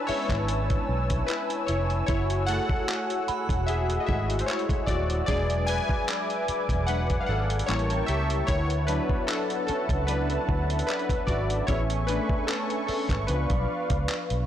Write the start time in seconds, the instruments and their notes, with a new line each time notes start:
Already playing: synth keys D4 E4 B4 C#5, analog synth pad C#5 G#5 A5 E6
0.07 synth keys G#3 B3 C#4 E4 C#5, synth bell E5, muted fingered electric bass stroke, open hi-hat
0.29 fingered electric bass G#1, kick, clap, closed hi-hat
0.48 closed hi-hat
0.70 kick, closed hi-hat
0.89 fingered electric bass B1
1.10 kick, closed hi-hat
1.27 synth keys E4 B4, clap, closed hi-hat
1.50 closed hi-hat
1.66 fingered electric bass F1, synth keys E4 C#5, closed hi-hat, open hi-hat
1.90 closed hi-hat
2.06 fingered electric bass F#1, synth keys E4 C#5, analog synth pad F#4 F#5, kick, closed hi-hat
2.30 closed hi-hat
2.46 synth keys A3 E4 G#4 A4 F#5, closed hi-hat
2.69 kick
2.88 clap, closed hi-hat
3.10 closed hi-hat
3.28 synth bell B5, muted fingered electric bass stroke, closed hi-hat
3.49 fingered electric bass E1, kick, closed hi-hat
3.66 synth keys G#4 E5, closed hi-hat
3.90 closed hi-hat
4.00 synth keys D#5
4.06 fingered electric bass G#1, synth keys G#3 A3 E4 G#4 E5, kick
4.30 closed hi-hat
4.39 synth keys C5, closed hi-hat
4.46 synth keys E4 C#5, clap, closed hi-hat
4.59 closed hi-hat
4.69 kick, closed hi-hat
4.86 fingered electric bass D#1, synth keys F#4 D5, kick, closed hi-hat
5.10 closed hi-hat
5.26 fingered electric bass E1, synth keys F#3 G#3 D4 G#4 D5, analog synth pad B4 E5 G#5 D6, kick, closed hi-hat
5.50 closed hi-hat
5.67 synth keys B4 G#5, closed hi-hat
5.89 kick
6.08 clap, closed hi-hat
6.30 closed hi-hat
6.48 muted fingered electric bass stroke, closed hi-hat
6.69 fingered electric bass E1, kick, closed hi-hat
6.87 synth keys F#3 G#3 D4 B4 F#5, closed hi-hat
7.10 kick, closed hi-hat
7.20 synth keys F5
7.26 fingered electric bass G#1, synth keys A4 F#5
7.50 closed hi-hat
7.59 closed hi-hat
7.66 fingered electric bass A1, synth keys G3 A#3 C#4 E4 C#5, analog synth pad A#4 G5 A5 C#6, clap, closed hi-hat
7.79 closed hi-hat
7.90 closed hi-hat
8.06 fingered electric bass C#2, synth keys G4 E5, closed hi-hat
8.30 closed hi-hat
8.47 fingered electric bass D2, synth keys E4 C#5, analog synth pad B4 E5 F#5 A5, kick, closed hi-hat
8.70 closed hi-hat
8.87 synth keys F#3 B3 D4 E4 B4, closed hi-hat
9.09 kick
9.27 synth keys D4 A4, clap, closed hi-hat
9.50 closed hi-hat
9.67 synth keys C#4 A4, muted fingered electric bass stroke, closed hi-hat
9.89 fingered electric bass C#2, kick, closed hi-hat
10.07 synth keys F#3 B3 D4 E4 B4, closed hi-hat
10.30 closed hi-hat
10.49 fingered electric bass D2, kick
10.70 closed hi-hat
10.79 closed hi-hat
10.87 synth keys D4 B4, clap, closed hi-hat
10.99 closed hi-hat
11.09 kick, closed hi-hat
11.27 fingered electric bass G#1, synth keys F#4 D5, kick, closed hi-hat
11.50 closed hi-hat
11.67 fingered electric bass A1, analog synth pad A3 G#5 C#6, synth keys B3 C#4 E4 G#4 C#5, kick, closed hi-hat
11.90 closed hi-hat
12.07 synth keys D4 B4, closed hi-hat
12.29 kick
12.47 synth keys C#4 A4, clap, closed hi-hat
12.70 closed hi-hat
12.87 synth keys C#4 A4, muted fingered electric bass stroke, open hi-hat
13.09 fingered electric bass G#1, kick, clap, closed hi-hat
13.27 fingered electric bass C#2, synth keys F3 B3 D4 B4, analog synth pad B4 D5 F5, closed hi-hat
13.50 fingered electric bass B1, kick, closed hi-hat
13.90 fingered electric bass C#2, kick, closed hi-hat
14.08 clap, closed hi-hat
14.30 fingered electric bass B1, closed hi-hat